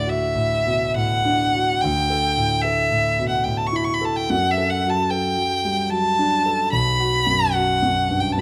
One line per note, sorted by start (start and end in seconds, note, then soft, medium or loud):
0.00 1.77 D2 medium
0.00 0.25 A2 soft
0.00 0.07 F#4 medium
0.00 0.10 D5 medium
0.07 0.53 F#4 medium
0.07 0.95 E5 medium
0.35 0.82 A2 medium
0.66 0.95 B2 soft
0.96 1.41 A2 medium
0.96 1.82 F#5 medium
1.25 1.70 D4 medium
1.54 1.82 F#4 medium
1.81 4.26 D2 medium
1.81 2.63 G5 loud
2.10 2.53 A4 medium
2.37 2.79 A2 soft
2.61 3.07 A4 medium
2.61 3.27 E5 medium
2.91 3.34 A2 medium
3.19 3.45 B2 soft
3.29 3.45 F#5 medium
3.44 3.90 A2 medium
3.44 3.59 G5 medium
3.57 3.68 A5 medium
3.67 3.77 C#6 medium
3.73 4.17 E4 medium
3.73 3.86 B5 medium
3.84 3.95 C#6 medium
3.94 4.06 B5 medium
4.01 4.29 A4 medium
4.01 4.17 A5 medium
4.16 4.31 G5 medium
4.30 6.68 F#2 medium
4.30 4.52 F#5 loud
4.51 4.71 E5 medium
4.58 4.99 A4 medium
4.70 4.91 F#5 medium
4.85 5.26 F#3 medium
4.90 5.12 A5 medium
5.10 5.53 A4 medium
5.10 5.92 G5 medium
5.37 5.80 F#3 medium
5.65 5.91 G3 soft
5.90 6.34 F#3 medium
5.90 6.72 A5 loud
6.19 6.62 D4 medium
6.46 6.72 A4 medium
6.73 8.41 B1 medium
6.73 7.54 B5 loud
7.00 7.43 F#4 medium
7.26 7.70 F#2 medium
7.53 7.98 F#4 medium
7.53 8.22 F#5 medium
7.82 8.25 F#2 medium
8.10 8.36 G2 soft
8.20 8.34 G5 medium
8.32 8.41 A5 medium
8.37 8.41 F#2 medium